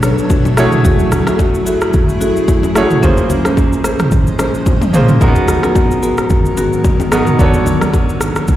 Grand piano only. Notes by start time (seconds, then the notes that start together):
Already playing: B3 D4 F#4 A4 C#5
0.57 A3 E4 F#4 G#4 C#5
2.75 A3 E4 F#4 G#4 C#5
3.02 A#3 C#4 F4 G#4 C5
4.93 A#3 C#4 F4 G#4 C5
5.21 A#3 D#4 F#4 G#4 A#4
5.27 B3
7.12 B3 D#4 F#4 G#4 A#4
7.39 B3 D4 F#4 A4 C#5